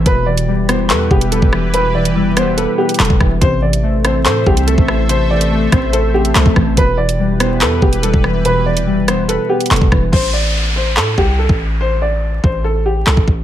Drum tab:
CC |--------------------------------|--------------------------------|--------------------------------|--------------------------------|
HH |x-----x-----x---x-----x-x-------|x-----x-----x---x-----xxxx------|x-----x-----x---x-----x-x-------|x-----x-----x---x-----x-x-------|
CP |----------------x---------------|------------------------x-------|----------------x---------------|------------------------x-------|
SD |------------r---------------r---|------------r---------------r---|------------r---------------r---|------------r---------------r---|
BD |o-------------------o-----o-----|--------------------------o-o---|o-------------------o-----o-----|------------o-------------o-o---|

CC |--------------------------------|--------------------------------|x-------------------------------|--------------------------------|
HH |x-----x-----x---x-----x-x-------|x-----x-----x---x-----xxxx------|--------------------------------|--------------------------------|
CP |----------------x---------------|------------------------x-------|----------------x---------------|------------------------x-------|
SD |------------r---------------r---|------------r---------------r---|--------------------------------|--------------------------------|
BD |o-------------------o-----o-----|--------------------------o-o---|o-------------------o-----o-----|------------o-------------o-o---|